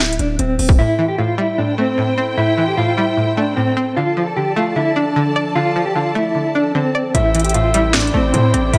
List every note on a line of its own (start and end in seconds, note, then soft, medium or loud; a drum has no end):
0.00 0.18 D1 loud
0.00 0.17 E4 medium
0.06 closed hi-hat medium
0.13 closed hi-hat medium
0.19 0.38 D1 loud
0.19 0.38 D4 medium
0.19 closed hi-hat medium
0.39 0.58 D1 loud
0.39 0.76 C4 medium
0.39 closed hi-hat medium
0.59 0.78 D1 loud
0.59 open hi-hat medium
0.69 kick loud
0.79 1.17 A2 medium
0.79 1.07 E4 loud
0.79 3.94 E4 medium
0.79 8.78 A4 medium
0.79 3.94 C5 medium
0.79 3.94 G5 loud
0.99 1.98 E3 medium
1.08 1.18 G4 medium
1.18 1.57 A2 medium
1.18 1.37 F4 medium
1.38 2.38 G3 loud
1.38 1.57 E4 medium
1.58 1.97 A2 medium
1.58 1.77 D4 medium
1.78 2.77 A3 medium
1.78 2.34 C4 medium
1.98 2.36 A2 medium
2.18 3.17 C4 medium
2.37 2.76 A2 medium
2.37 2.66 E4 loud
2.58 3.57 E3 medium
2.68 2.77 G4 medium
2.77 3.16 A2 medium
2.77 2.96 F4 medium
2.97 3.97 G3 loud
2.97 3.35 E4 medium
3.18 3.56 A2 medium
3.37 3.97 A3 medium
3.37 3.56 D4 medium
3.56 3.97 A2 medium
3.56 3.94 C4 medium
3.77 3.97 C4 medium
3.96 4.36 D3 medium
3.96 7.11 F3 medium
3.96 4.25 F4 loud
3.96 7.11 D5 medium
3.96 7.11 A5 loud
4.17 5.16 F3 medium
4.26 4.36 A4 medium
4.36 4.75 D3 medium
4.36 4.55 G4 medium
4.56 5.56 A3 loud
4.56 4.75 F4 medium
4.76 5.15 D3 medium
4.76 4.95 E4 medium
4.96 5.95 D4 medium
4.96 5.52 D4 medium
5.16 5.55 D3 loud
5.36 6.35 D5 medium
5.55 5.94 D3 medium
5.55 5.84 F4 loud
5.76 6.75 F3 medium
5.86 5.95 G4 medium
5.96 6.34 D3 medium
5.96 6.14 F4 medium
6.15 7.15 A3 loud
6.15 6.53 E4 medium
6.35 6.74 D3 medium
6.55 6.74 D4 medium
6.55 7.15 D4 medium
6.75 7.15 D3 loud
6.75 7.12 C4 medium
6.95 7.15 D5 medium
7.15 8.10 A1 loud
7.15 7.53 A2 medium
7.15 7.43 E4 loud
7.15 8.78 E4 medium
7.15 8.78 C5 medium
7.15 7.90 E5 loud
7.15 8.78 G5 medium
7.15 closed hi-hat medium
7.35 8.34 E3 medium
7.35 closed hi-hat medium
7.39 closed hi-hat medium
7.44 7.54 G4 medium
7.44 closed hi-hat medium
7.49 closed hi-hat medium
7.54 7.93 A2 medium
7.54 7.73 F4 medium
7.54 closed hi-hat medium
7.74 8.73 G3 loud
7.74 7.93 E4 medium
7.74 closed hi-hat medium
7.94 8.33 A2 medium
7.94 8.13 D4 medium
7.94 8.31 D5 medium
7.94 finger snap loud
7.94 snare loud
7.94 closed hi-hat medium
8.01 closed hi-hat medium
8.07 closed hi-hat soft
8.14 8.33 A1 loud
8.14 8.78 A3 medium
8.14 8.70 C4 medium
8.34 8.72 A2 medium
8.34 8.53 A2 loud
8.34 8.53 C5 medium
8.34 closed hi-hat medium
8.54 8.73 A1 loud
8.54 8.78 C4 medium
8.54 8.73 D5 medium
8.54 closed hi-hat medium
8.73 8.78 A1 loud
8.73 8.78 A2 medium
8.73 8.78 E4 loud
8.73 8.78 C5 loud
8.73 closed hi-hat medium